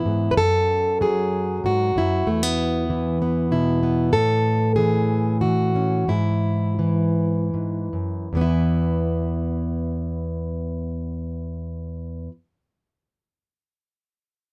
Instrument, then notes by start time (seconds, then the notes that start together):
steel-string acoustic guitar
Already playing: E3 B3 E4
0.05 G#2
0.31 B4
0.37 F#2 A4
1.01 F#3 G#4
1.64 G#2 F#4
1.96 F#2 E4
2.27 E2 A3
2.43 B3
2.90 E3
3.22 B3
3.51 B2 E4
3.83 B3
4.13 A2 A4
4.76 E3 G#4
5.41 E3 F#4
5.75 C#4
6.08 G#2 E4
6.79 E3
7.54 G#2
7.93 F#2
8.33 E2 E3 B3
8.41 E4